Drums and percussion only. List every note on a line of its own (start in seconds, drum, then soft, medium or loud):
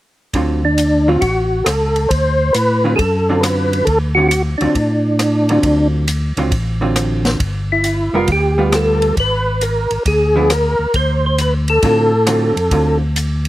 0.33 kick soft
0.33 ride soft
0.78 hi-hat pedal medium
0.78 ride medium
1.22 kick soft
1.22 ride medium
1.66 cross-stick medium
1.66 hi-hat pedal medium
1.66 ride medium
1.96 ride soft
2.10 kick soft
2.10 ride medium
2.54 hi-hat pedal soft
2.54 ride medium
2.99 kick soft
2.99 ride medium
3.43 cross-stick medium
3.43 hi-hat pedal medium
3.43 ride medium
3.73 ride soft
3.87 kick soft
3.87 ride medium
4.31 hi-hat pedal medium
4.31 ride medium
4.61 ride soft
4.75 kick soft
4.75 ride soft
5.19 cross-stick medium
5.19 hi-hat pedal medium
5.19 ride medium
5.49 ride soft
5.63 kick soft
5.63 ride medium
6.08 hi-hat pedal soft
6.08 ride medium
6.37 ride soft
6.51 kick soft
6.51 ride soft
6.96 cross-stick medium
6.96 hi-hat pedal medium
6.96 ride medium
7.25 snare soft
7.25 ride soft
7.40 kick soft
7.40 ride medium
7.84 hi-hat pedal medium
7.84 ride medium
8.28 kick soft
8.28 ride medium
8.72 cross-stick medium
8.72 hi-hat pedal soft
8.72 ride medium
9.02 ride soft
9.17 kick soft
9.17 ride medium
9.61 hi-hat pedal soft
9.61 ride medium
9.91 ride soft
10.06 kick soft
10.06 ride medium
10.50 cross-stick medium
10.50 hi-hat pedal soft
10.50 ride medium
10.94 kick soft
10.94 ride medium
11.38 hi-hat pedal medium
11.38 ride medium
11.68 ride soft
11.82 kick soft
11.82 ride medium
12.27 cross-stick medium
12.27 hi-hat pedal soft
12.27 ride medium
12.57 ride soft
12.71 kick soft
12.71 ride medium
13.16 hi-hat pedal medium
13.16 ride medium
13.45 ride soft